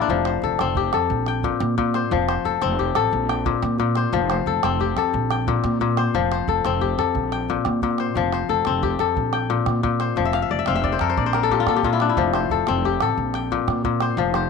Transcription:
Already playing: A#2 E4 F4 G4 A4 A#4 C5
0.01 D4, calabash click
0.08 F1 F3, calabash thump, calabash click
0.17 calabash click
0.25 C5, calabash click
0.42 F1 A4, calabash thump, calabash click
0.59 F1 C4, calabash click
0.75 G4, calabash thump
0.93 F2 A4, calabash click
1.10 A#1, calabash thump
1.26 G5, calabash click
1.43 A#2, calabash thump
1.60 A#2, calabash click
1.78 A#2, calabash thump
1.94 C5, calabash click
2.11 F1 F3, calabash thump, calabash click
2.20 calabash click
2.28 C5, calabash click
2.44 F1 A4, calabash thump, calabash click
2.62 F1 C4, calabash click
2.79 G4, calabash thump
2.95 A1 A4, calabash click
3.12 A#1, calabash thump
3.29 G5, calabash click
3.45 A#2, calabash thump
3.62 A#2, calabash click
3.78 A#2, calabash thump
3.95 C5, calabash click
4.12 F1 F3, calabash thump, calabash click
4.22 calabash click
4.30 C5, calabash click
4.46 F1 A4, calabash thump, calabash click
4.63 F1 C4, calabash click
4.80 G4, calabash thump
4.96 F2 A4, calabash click
5.13 A#1, calabash thump
5.31 G5, calabash click
5.47 A#2, calabash thump
5.64 A#2, calabash click
5.80 A#2, calabash thump
5.97 C5, calabash click
6.14 F1 F3, calabash thump
6.32 C5, calabash click
6.47 F1 A4, calabash thump
6.65 F1 C4, calabash click
6.81 G4, calabash thump
6.98 F2 A4, calabash click
7.15 A#1, calabash thump, calabash click
7.24 calabash click
7.32 G5, calabash click
7.41 calabash click
7.49 A#2, calabash thump
7.65 A#2, calabash click
7.82 A#2, calabash thump
7.91 calabash click
7.98 C5, calabash click
8.07 calabash click
8.15 F1 F3, calabash thump, calabash click
8.23 calabash click
8.33 C5, calabash click
8.49 F1 A4, calabash thump, calabash click
8.65 F1 C4, calabash click
8.83 G4, calabash thump
8.99 F2 A4, calabash click
9.16 A#1, calabash thump
9.33 G5, calabash click
9.50 A#2
9.66 A#2, calabash click
9.83 A#2, calabash thump
10.00 C5, calabash click
10.16 F1 F3, calabash thump, calabash click
10.25 E5, calabash click
10.33 F5, calabash click
10.42 E5
10.49 F1 D5, calabash thump, calabash click
10.59 E5
10.66 F1 C4 F5, calabash click
10.75 E5
10.83 D5, calabash thump
10.92 C5
10.99 F2 A4 A#4, calabash click
11.09 C5
11.17 A#1 D5, calabash thump
11.26 C5
11.33 A#4, calabash click
11.43 A4
11.50 A#2 G4, calabash thump
11.60 F4
11.67 A#2 A4, calabash click
11.77 G4
11.83 A#2 F4, calabash thump
11.93 E4
12.00 D4, calabash click
12.09 E4
12.17 F1 F3, calabash thump, calabash click
12.25 calabash click
12.34 C5, calabash click
12.50 F1 A4, calabash thump, calabash click
12.67 F1 C4, calabash click
12.85 G4, calabash thump
13.01 A1 A4, calabash click
13.17 A#1, calabash thump
13.34 G5, calabash click
13.51 A#2, calabash thump
13.68 A#2, calabash click
13.84 A#2, calabash thump
14.00 C5, calabash click
14.17 F1 F3, calabash thump, calabash click
14.26 calabash click
14.34 C5, calabash click

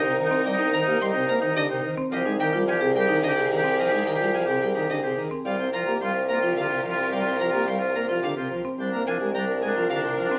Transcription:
Already playing: C2 D#4 A#4
0.03 C3 C5
0.16 D#3 C5
0.25 D#4
0.31 C4
0.45 G3 D5 D#5
0.53 D#4
0.59 C4 D#4
0.73 D#3 C5 A#5
0.82 D#4
0.86 A#3 G4
1.01 G3 C6
1.11 C3 D#4 C5
1.28 A#3 C5 A#5
1.41 D#3 D#4
1.56 D3 G4 D#5
1.69 C3 D#4 C5
1.84 D#3 C5
1.97 C4
2.12 C2 F3 G4 G#4 C5 D#5
2.25 G#3 D#4
2.39 D#3 G4 A#4 G5
2.53 G3 F4
2.67 F3 G4 D5 G#5
2.81 C3 G#4
2.95 G3 A#4 G5
2.99 G4
3.08 D#3 D#4
3.23 D3 G4 D#5
3.29 G4
3.36 C3 G#4
3.50 D#3 A#4
3.58 G4
3.64 C4
3.78 F3 C5 D#5
3.87 G4
3.92 G#3 D#4
4.06 D#3 A#4 G5
4.16 F4 G4
4.20 G3
4.34 F3 D5 G#5
4.45 C3 G4 G#4
4.62 G3 A#4 G5
4.74 D#3 D#4 G4
4.89 D3 G4 D#5
5.03 C3 G4 G#4
5.18 D#3 A#4
5.31 C4
5.45 C2 G3 F4 G4 A#4 D5 F5
5.59 C4
5.73 F3 F4 C5 A#5
5.86 A#3 G4
6.01 G3 F4 F5 C6
6.14 C5
6.28 A#3 C5 A#5
6.33 F4
6.42 F3 F4
6.56 D3 G4 F5
6.61 F4
6.70 C3 C5
6.84 F3 C5
6.90 F4
6.98 C4
7.12 G3 D5 F5
7.20 F4
7.26 C4
7.40 F3 C5 A#5
7.49 A#3 F4
7.54 G4
7.66 G3 F5 C6
7.78 F4 C5
7.95 A#3 C5 A#5
8.07 F3 F4
8.23 D3 G4 F5
8.36 C3 F4 C5
8.50 F3 C5
8.65 C4
8.78 C2 G3 D4 A#4 C5
8.93 A#3
9.06 F3 D4 A#4 G#5
9.20 G#3 G4
9.34 G3 D4 D5 A#5
9.48 A#4
9.62 G#3 A#4 G#5
9.67 D4
9.76 F3 F4
9.90 D3 G4 F5
9.96 D4
10.03 C3 A#4
10.17 F3 A#4
10.25 D4
10.31 C4

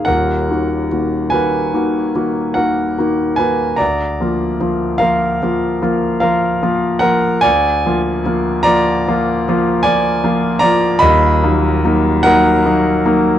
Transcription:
Already playing: D#3 A#3 D#4 F#4 G#4 D#5 F5
0.05 D#1 D#2 A#4 F#5
0.50 D#3 A#3 F#4
0.92 D#3 A#3 F#4
1.30 D#3 A#3 F#4 B4 G#5
1.74 D#3 A#3 F#4
2.16 D#3 A#3 F#4
2.54 D#3 A#3 F#4 A#4 F#5
2.98 D#3 A#3 F#4
3.36 D#3 A#3 B4 G#5
3.40 F#4
3.77 D2 D5 A#5
4.20 F3 A#3 F4
4.61 F3 A#3 F4
4.98 F3 A#3 F4 A#4 F5
5.42 F3 A#3 F4
5.82 F3 A#3 F4
6.20 F3 A#3 F4 A#4 F5
6.62 F3 A#3 F4
6.99 F3 A#3 A#4 F#5
7.03 F4
7.41 D2 D5 G#5
7.85 F3 A#3 F4
8.25 F3 A#3 F4
8.63 F3 A#3 F4 D5 A#5
9.08 F3 A#3 F4
9.49 F3 A#3 F4
9.83 F3 A#3 F4 D5 G#5
10.24 F3 A#3 F4
10.59 F3 A#3 F4 D5 A#5
10.99 D#1 D#2 D#5 B5
11.44 F#3 A#3 D#4
11.84 F#3 A#3 D#4
12.23 F#3 A#3 D#4 A#4 F#5
12.65 F#3 A#3 D#4
13.05 F#3 A#3 D#4

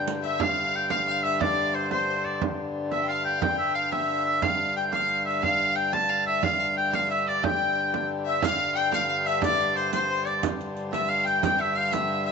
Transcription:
Already playing: G2 D3
0.07 riq
0.23 E5, riq, frame drum
0.39 G2 D3 F5, frame drum
0.75 G5
0.90 F5, frame drum
1.07 F5
1.23 E5, frame drum
1.40 D5, frame drum
1.74 C5
1.91 C5, frame drum
2.08 C5
2.25 D5, frame drum
2.42 frame drum
2.91 E5, frame drum
3.03 G5
3.08 F5
3.25 G5, frame drum
3.42 G5, frame drum
3.59 E5
3.74 F5
3.92 E5, frame drum
4.25 E5
4.42 G2 D3 F5, frame drum
4.76 G5
4.92 F5, frame drum
5.25 E5
5.42 F5, frame drum
5.75 G5
5.92 A5, frame drum
6.09 F5
6.26 E5, frame drum
6.43 F5, frame drum
6.59 F5
6.76 G5
6.92 F5, frame drum
7.08 E5
7.27 D5, frame drum
7.44 G5, frame drum
7.94 frame drum
8.25 E5
8.41 G2 D3 F5, riq, frame drum
8.60 riq
8.75 G5, riq
8.92 F5, riq, frame drum
9.09 F5
9.25 E5, riq
9.42 D5, riq, frame drum
9.60 riq
9.76 C5, riq
9.92 C5, riq, frame drum
10.10 C5
10.26 D5, riq, frame drum
10.43 riq, frame drum
10.61 riq
10.76 riq
10.92 E5, riq, frame drum
11.08 F5
11.24 G5, riq, frame drum
11.41 G5, riq, frame drum
11.59 E5
11.76 F5, frame drum
11.92 E5, riq, frame drum
12.25 E5

